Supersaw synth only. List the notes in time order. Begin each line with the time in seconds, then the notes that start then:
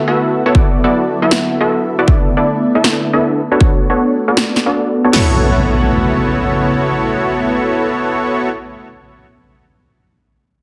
0.08 B3 E4 F#4 A4 E5
0.46 B3 E4 F#4 A4 C#5
0.55 B3 E4 F#4 A4 D5
0.84 B3 E4 F#4 A4 D5
1.22 B3 E4 F#4 A4 E5
1.61 B3 E4 F#4 A4 E5
1.99 B3 E4 F#4 A4 D5
2.08 B3 D4 E4 A4 D5
2.37 B3 D4 E4 A4 D5
2.75 B3 D4 E4 A4 E5
3.13 B3 D4 E4 A4 E5
3.52 B3 D4 F#4 A4 C#5
3.61 D4 F#4 C#5
3.90 B3 D4 F#4 A4 C#5
4.28 B3 D4 F#4 A4 D5
4.66 B3 D4 F#4 A4 D5
5.04 B3 D4 F#4 A4 C#5
5.13 B3 E4 F#4 A4 C#5